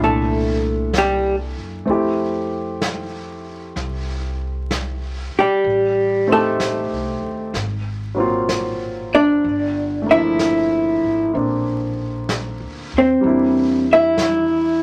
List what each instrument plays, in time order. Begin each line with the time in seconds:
Already playing: grand piano A#2 D4
0.00 upright bass C2, hollow-body jazz guitar A3, grand piano E4 A4
0.04 hollow-body jazz guitar A4
0.93 brush sweep, snare, hi-hat pedal
0.98 hollow-body jazz guitar G3 G4
1.57 upright bass F#2
1.86 upright bass F2, grand piano A3 C4 E4, brush sweep
1.90 grand piano G4
2.82 brush sweep, snare, hi-hat pedal
3.76 upright bass C2, brush sweep, snare
4.71 brush sweep, snare, hi-hat pedal
5.35 hollow-body jazz guitar G4, muted upright bass stroke
5.40 hollow-body jazz guitar G3
5.64 upright bass A1, brush sweep
6.27 grand piano A3 C4 D#4
6.32 hollow-body jazz guitar A3 A4, grand piano G4
6.60 brush sweep, snare, hi-hat pedal
6.92 upright bass C2
7.21 upright bass D#2
7.54 upright bass G#1, brush sweep, snare
8.15 grand piano F#3 A#3 C4
8.20 grand piano F4
8.49 brush sweep, snare, hi-hat pedal
9.15 hollow-body jazz guitar D4 D5
9.43 upright bass G1, brush sweep
10.02 grand piano A3
10.07 grand piano A#3 D4
10.11 grand piano F3, hollow-body jazz guitar E4 E5
10.39 brush sweep, snare, hi-hat pedal
11.03 upright bass G#1
11.33 upright bass A#1, grand piano A#3 C4 D4, brush sweep
12.29 brush sweep, snare, hi-hat pedal
12.60 upright bass D2
12.93 upright bass D#2
12.98 hollow-body jazz guitar C4 C5
13.21 upright bass E2, grand piano G3 A#3, brush sweep
13.25 grand piano D4 E4
13.93 hollow-body jazz guitar E4 E5
14.18 brush sweep, snare, hi-hat pedal